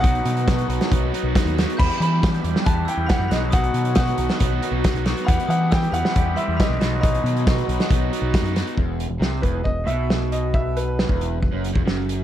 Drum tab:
CC |----------------|x---------------|----------------|----------------|
HH |xxxxxxxxx-x-xxxx|-xx-xxx-x-x-x-x-|xxxxxxxxx-x-xxxx|xxx-xxx-x-x-x-x-|
SD |----o--o----o-o-|----o--o----o-o-|----o--o----o-o-|----o--o----o-o-|
BD |o---o---o---o---|o---o---o---o---|o---o---o---o---|o---o---o---o---|

CC |----------------|----------------|----------------|
HH |xxxxxxxxx-x-xxxx|--x---x---x---x-|--x---x---x---x-|
SD |----o--o----o-o-|----o-------o---|----o-------o---|
BD |o---o---o---o---|o-----o-o-------|o----o--o--o----|